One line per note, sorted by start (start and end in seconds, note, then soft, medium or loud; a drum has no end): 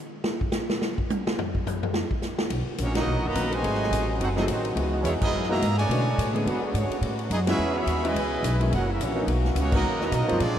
0.24 snare loud
0.41 kick medium
0.52 snare loud
0.52 hi-hat pedal medium
0.70 snare loud
0.82 snare loud
0.98 kick medium
1.10 hi-hat pedal medium
1.10 high tom loud
1.27 snare loud
1.39 floor tom loud
1.55 kick medium
1.67 floor tom loud
1.67 hi-hat pedal medium
1.83 floor tom loud
1.94 snare loud
2.11 kick medium
2.22 snare medium
2.22 hi-hat pedal medium
2.38 snare loud
2.49 2.66 B1 loud
2.49 3.62 D#3 medium
2.49 3.62 A#3 medium
2.49 3.62 B3 medium
2.49 3.62 F#4 medium
2.49 ride medium
2.78 3.06 A#1 loud
2.78 2.96 A#3 medium
2.78 2.96 C#4 medium
2.78 2.96 C#5 loud
2.78 hi-hat pedal medium
2.78 ride medium
2.82 2.96 D#4 medium
2.82 2.96 F#4 medium
2.95 3.22 F#3 medium
2.95 3.22 A#3 medium
2.95 3.23 B3 medium
2.95 3.22 D#4 loud
2.95 3.23 F#4 medium
2.95 3.23 A#4 medium
2.95 3.23 D#5 loud
2.95 snare loud
2.95 ride medium
3.07 3.17 B1 medium
3.17 3.25 A#1 medium
3.25 3.34 F#1 medium
3.25 3.52 D#3 loud
3.25 3.53 F#3 loud
3.25 3.53 A#3 medium
3.25 3.52 F#4 loud
3.25 3.53 B4 loud
3.25 3.52 D#5 loud
3.25 3.53 A#5 loud
3.35 3.62 A#1 loud
3.35 3.50 F#3 medium
3.35 3.50 B3 medium
3.35 3.50 C#4 medium
3.35 3.50 D#4 medium
3.35 3.50 A#4 medium
3.35 hi-hat pedal medium
3.35 ride medium
3.52 4.09 C3 medium
3.52 4.09 D#3 medium
3.52 4.08 G#3 medium
3.52 4.09 F#4 medium
3.52 4.09 C5 loud
3.52 4.09 D#5 loud
3.52 4.09 G#5 loud
3.52 ride medium
3.62 3.90 G#1 medium
3.62 4.75 C3 medium
3.62 4.04 F#3 medium
3.62 4.76 F#3 medium
3.62 4.04 A3 medium
3.62 4.04 C4 medium
3.62 4.05 D#4 medium
3.62 5.88 F#4 medium
3.62 4.05 G#4 medium
3.62 4.76 G#4 medium
3.62 ride medium
3.74 snare soft
3.83 snare soft
3.91 4.18 A1 loud
3.91 hi-hat pedal medium
3.91 ride medium
4.19 4.47 F#1 medium
4.19 4.27 C4 medium
4.19 4.27 D#4 loud
4.19 4.29 D#4 medium
4.19 4.27 F#4 medium
4.19 4.29 A4 medium
4.19 4.29 C5 medium
4.19 4.29 F#5 medium
4.19 ride medium
4.35 4.41 F#3 medium
4.35 4.47 F#3 medium
4.35 4.47 A3 medium
4.35 4.41 C4 medium
4.35 4.47 C4 medium
4.35 4.43 C4 medium
4.35 4.41 D#4 medium
4.35 4.47 D#4 medium
4.35 4.43 F#4 medium
4.35 4.47 G#4 medium
4.35 4.43 A4 medium
4.35 4.43 D#5 medium
4.35 snare medium
4.48 4.75 A1 loud
4.48 4.69 D#3 medium
4.48 4.69 F#3 medium
4.48 4.70 A3 medium
4.48 4.69 C4 medium
4.48 4.70 D#4 medium
4.48 4.70 F#4 medium
4.48 4.70 C5 medium
4.48 hi-hat pedal medium
4.48 ride medium
4.65 ride medium
4.75 5.03 C#2 medium
4.75 5.17 E3 medium
4.75 5.89 E3 medium
4.75 5.17 G#3 medium
4.75 5.17 B3 medium
4.75 5.89 B3 medium
4.75 5.18 D#4 medium
4.75 5.89 D#4 medium
4.75 5.18 F#4 medium
4.75 ride medium
5.02 5.20 E2 loud
5.02 5.10 E3 medium
5.02 5.11 G#3 medium
5.02 5.13 B3 medium
5.02 5.10 C#4 medium
5.02 5.12 E4 medium
5.02 5.12 G#4 medium
5.02 5.12 C#5 medium
5.02 hi-hat pedal medium
5.02 ride medium
5.19 5.46 G#3 medium
5.19 5.46 B3 loud
5.19 5.48 B3 medium
5.19 5.47 D#4 medium
5.19 5.48 E4 medium
5.19 5.48 G#4 medium
5.19 5.47 D#5 loud
5.19 muted upright bass stroke soft
5.19 kick loud
5.19 crash medium
5.33 5.60 F#2 medium
5.43 snare soft
5.48 5.75 B2 loud
5.48 5.75 E3 loud
5.48 5.59 E3 medium
5.48 5.60 G#3 medium
5.48 5.75 A#3 medium
5.48 5.60 B3 medium
5.48 5.60 D#4 medium
5.48 5.60 F#4 medium
5.48 5.76 G#4 loud
5.48 5.76 D#5 loud
5.48 5.76 E5 loud
5.48 5.76 A#5 loud
5.53 snare soft
5.62 5.88 G#2 loud
5.62 hi-hat pedal medium
5.62 ride medium
5.77 6.30 A2 medium
5.77 6.30 D3 medium
5.77 6.30 G#3 medium
5.77 6.30 F#4 loud
5.77 6.30 C#5 loud
5.77 6.30 D5 loud
5.77 6.30 G#5 loud
5.77 ride medium
5.89 6.16 B2 loud
5.89 6.04 D3 medium
5.89 6.44 D3 medium
5.89 6.45 F#3 medium
5.89 6.04 A3 medium
5.89 6.04 B3 medium
5.89 6.45 B3 medium
5.89 6.04 C#4 medium
5.89 6.45 D4 medium
5.89 6.05 F#4 medium
5.89 ride medium
6.18 6.44 A2 loud
6.18 hi-hat pedal medium
6.18 ride medium
6.34 6.44 D3 medium
6.34 6.44 G#3 medium
6.34 6.45 B3 medium
6.34 6.44 C#4 medium
6.34 6.45 G#4 medium
6.34 ride medium
6.44 6.61 E2 medium
6.44 7.01 D3 medium
6.44 8.12 G#3 medium
6.44 6.61 B3 loud
6.44 7.01 C#4 medium
6.44 6.61 D4 medium
6.44 8.13 F#4 medium
6.44 6.61 F#4 medium
6.44 ride medium
6.48 6.63 D4 medium
6.48 6.62 G#4 medium
6.48 6.62 B4 medium
6.48 6.63 F#5 medium
6.62 6.73 G#3 medium
6.62 6.74 B3 medium
6.62 6.75 B3 medium
6.62 6.74 D4 medium
6.62 6.74 F#4 medium
6.62 6.74 G#4 medium
6.62 6.75 D5 medium
6.62 muted upright bass stroke soft
6.74 6.89 G#2 loud
6.74 6.96 D3 medium
6.74 6.96 G#3 medium
6.74 6.98 B3 medium
6.74 6.96 C#4 medium
6.74 6.98 F#4 medium
6.74 6.98 G#4 medium
6.74 6.98 C#5 medium
6.74 hi-hat pedal medium
6.74 ride medium
6.90 muted upright bass stroke soft
6.90 ride medium
7.01 7.29 A2 loud
7.01 9.26 C#3 medium
7.01 8.69 B3 medium
7.01 ride medium
7.19 ride soft
7.30 7.57 F#2 loud
7.30 7.39 B3 medium
7.30 7.38 D#4 medium
7.30 7.39 E4 medium
7.30 7.39 G#4 medium
7.30 7.39 D#5 loud
7.30 hi-hat pedal medium
7.30 ride medium
7.46 7.57 E3 medium
7.46 7.57 G#3 medium
7.46 7.73 G#3 medium
7.46 7.57 B3 medium
7.46 7.57 C#4 medium
7.46 7.74 C#4 medium
7.46 7.74 C#4 loud
7.46 7.74 E4 loud
7.46 7.58 F#4 medium
7.46 7.75 G#4 loud
7.46 7.74 B4 medium
7.46 7.75 E5 loud
7.46 snare medium
7.46 ride medium
7.58 7.85 E2 medium
7.74 8.02 E3 loud
7.74 8.02 G#3 loud
7.74 8.03 B3 loud
7.74 8.04 G#4 loud
7.74 8.04 C#5 loud
7.74 8.05 E5 loud
7.74 8.05 B5 loud
7.86 8.14 D#2 loud
7.86 hi-hat pedal medium
7.86 ride medium
8.03 8.60 B2 medium
8.03 8.14 E3 medium
8.03 8.60 E3 medium
8.03 8.60 G#3 medium
8.03 8.14 G#3 medium
8.03 8.14 B3 medium
8.03 8.14 C#4 medium
8.03 8.14 E4 medium
8.03 8.61 E4 loud
8.03 8.61 B4 loud
8.03 8.61 D#5 loud
8.03 8.61 G#5 loud
8.03 ride medium
8.15 8.42 C#2 medium
8.15 8.71 E3 medium
8.15 8.71 E4 medium
8.15 ride medium
8.43 8.70 B1 loud
8.43 hi-hat pedal medium
8.43 ride medium
8.60 8.70 F#3 medium
8.60 8.70 G#3 medium
8.60 8.70 A#3 medium
8.60 8.70 C#4 medium
8.60 8.70 E4 medium
8.60 ride medium
8.71 8.98 F#1 medium
8.71 9.28 F#3 medium
8.71 10.59 A#3 medium
8.71 8.88 A#3 medium
8.71 8.88 C#4 medium
8.71 9.28 E4 medium
8.71 8.88 E4 medium
8.71 8.88 F#4 loud
8.71 8.88 A#4 medium
8.71 8.88 C#5 medium
8.71 8.88 F#5 loud
8.71 ride medium
8.90 9.01 A#3 medium
8.90 9.01 C#4 medium
8.90 9.02 C#4 medium
8.90 9.01 E4 medium
8.90 9.02 F#4 medium
8.90 9.02 A#4 medium
8.90 9.02 E5 medium
9.00 9.26 A#1 loud
9.00 9.23 E3 medium
9.00 9.24 A#3 medium
9.00 9.24 C#4 medium
9.00 9.24 E4 medium
9.00 hi-hat pedal medium
9.00 ride medium
9.04 9.24 F#4 medium
9.04 9.24 C#5 medium
9.16 9.26 F#3 medium
9.16 9.26 A#3 medium
9.16 9.26 B3 medium
9.16 9.26 C#4 medium
9.16 9.26 D#4 medium
9.27 9.55 B1 medium
9.27 10.39 D#3 medium
9.27 10.39 B3 medium
9.27 10.39 F#4 medium
9.27 ride medium
9.45 snare medium
9.55 9.82 C#2 loud
9.55 9.72 C#4 medium
9.55 hi-hat pedal medium
9.55 ride medium
9.60 9.74 A#3 medium
9.60 9.74 D#4 medium
9.60 9.73 F#4 medium
9.60 9.74 C#5 loud
9.71 9.82 F#3 medium
9.71 10.00 F#3 medium
9.71 9.83 A#3 medium
9.71 10.00 A#3 medium
9.71 9.83 B3 medium
9.71 10.00 B3 medium
9.71 9.83 C#4 medium
9.71 9.83 D#4 medium
9.71 10.00 D#4 medium
9.71 9.99 F#4 loud
9.71 10.00 A#4 medium
9.71 10.00 D#5 loud
9.71 kick loud
9.71 crash medium
9.83 10.11 D#2 medium
10.01 10.13 D#3 medium
10.01 10.12 F#3 medium
10.01 10.11 A#3 medium
10.01 10.12 F#4 medium
10.01 10.13 B4 medium
10.01 10.12 D#5 medium
10.01 10.14 A#5 loud
10.01 snare medium
10.11 10.21 B2 loud
10.11 10.41 F#3 medium
10.11 10.41 A#3 medium
10.11 10.41 B3 medium
10.11 10.41 D#4 medium
10.11 10.41 F#4 medium
10.11 10.41 A#4 medium
10.11 10.41 D#5 loud
10.11 hi-hat pedal medium
10.11 ride medium
10.21 10.30 A#2 medium
10.28 10.39 F#2 medium
10.28 10.39 F3 medium
10.28 10.39 G#3 medium
10.28 10.39 A#3 medium
10.28 10.39 C4 medium
10.28 10.39 F4 medium
10.28 ride medium
10.40 10.59 A#2 medium
10.40 10.59 C3 medium
10.40 10.59 F3 medium
10.40 10.59 G#3 medium
10.40 10.59 C4 medium
10.40 10.59 D4 medium
10.40 10.59 F4 medium
10.40 10.59 G#4 medium
10.40 10.59 D5 loud
10.40 snare soft
10.40 ride medium